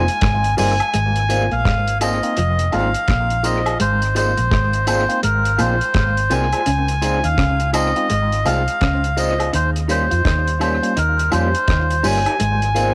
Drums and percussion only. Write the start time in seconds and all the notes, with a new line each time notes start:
0.08 closed hi-hat
0.21 kick, cross-stick, closed hi-hat
0.44 closed hi-hat
0.58 open hi-hat, tambourine
0.80 closed hi-hat, high woodblock
0.93 closed hi-hat
1.16 closed hi-hat
1.30 closed hi-hat, tambourine
1.51 closed hi-hat
1.65 kick, cross-stick, closed hi-hat
1.87 closed hi-hat
2.01 closed hi-hat, tambourine, high woodblock
2.23 closed hi-hat
2.37 closed hi-hat
2.59 closed hi-hat
2.72 closed hi-hat, tambourine, high woodblock
2.94 closed hi-hat
3.08 kick, cross-stick, closed hi-hat
3.30 closed hi-hat
3.44 closed hi-hat, tambourine
3.66 closed hi-hat, high woodblock
3.80 closed hi-hat
4.02 closed hi-hat
4.16 closed hi-hat, tambourine
4.37 closed hi-hat
4.52 kick, cross-stick, closed hi-hat
4.73 closed hi-hat
4.87 closed hi-hat, tambourine, high woodblock
5.10 closed hi-hat
5.23 closed hi-hat
5.46 closed hi-hat
5.59 closed hi-hat, tambourine, high woodblock
5.81 closed hi-hat
5.94 kick, cross-stick, closed hi-hat
6.17 closed hi-hat
6.31 closed hi-hat, tambourine
6.53 closed hi-hat, high woodblock
6.66 closed hi-hat
6.88 closed hi-hat
7.02 closed hi-hat, tambourine
7.24 closed hi-hat
7.38 kick, cross-stick, closed hi-hat
7.60 closed hi-hat
7.74 closed hi-hat, tambourine, high woodblock
7.96 closed hi-hat
8.09 closed hi-hat
8.32 closed hi-hat
8.45 closed hi-hat, tambourine, high woodblock
8.68 closed hi-hat
8.81 kick, cross-stick, closed hi-hat
9.04 closed hi-hat
9.17 closed hi-hat, tambourine
9.40 closed hi-hat, high woodblock
9.53 closed hi-hat
9.76 closed hi-hat
9.89 closed hi-hat, tambourine
10.11 closed hi-hat
10.25 kick, cross-stick, closed hi-hat
10.47 closed hi-hat
10.61 closed hi-hat, tambourine, high woodblock
10.83 closed hi-hat
10.97 closed hi-hat
11.19 closed hi-hat
11.32 closed hi-hat, tambourine, high woodblock
11.55 closed hi-hat
11.68 kick, cross-stick, closed hi-hat
11.90 closed hi-hat
12.04 open hi-hat, tambourine
12.26 closed hi-hat, high woodblock
12.40 closed hi-hat
12.62 closed hi-hat
12.76 closed hi-hat, tambourine